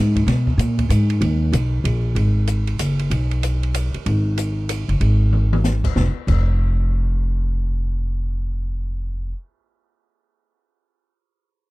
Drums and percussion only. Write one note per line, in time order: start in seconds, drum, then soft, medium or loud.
0.16 kick soft
0.16 ride soft
0.28 snare soft
0.28 ride medium
0.47 kick soft
0.59 hi-hat pedal soft
0.59 ride medium
0.78 kick soft
0.78 ride soft
0.90 hi-hat pedal medium
0.90 ride medium
1.10 ride soft
1.22 ride medium
1.53 hi-hat pedal medium
1.53 ride medium
1.85 ride medium
2.16 ride medium
2.47 hi-hat pedal medium
2.47 ride soft
2.67 ride soft
2.79 hi-hat pedal medium
2.79 ride medium
2.99 ride soft
3.11 ride medium
3.31 ride soft
3.43 hi-hat pedal medium
3.43 ride medium
3.63 ride soft
3.74 hi-hat pedal medium
3.74 ride medium
3.94 ride soft
4.06 ride medium
4.38 hi-hat pedal soft
4.38 ride medium
4.69 hi-hat pedal medium
4.69 ride medium
4.89 ride soft
5.01 ride soft
5.32 high tom soft
5.53 high tom medium
5.64 snare soft
5.64 hi-hat pedal medium
5.84 kick medium
5.84 crash medium
5.96 kick medium
5.96 snare medium
6.28 kick soft
6.28 crash soft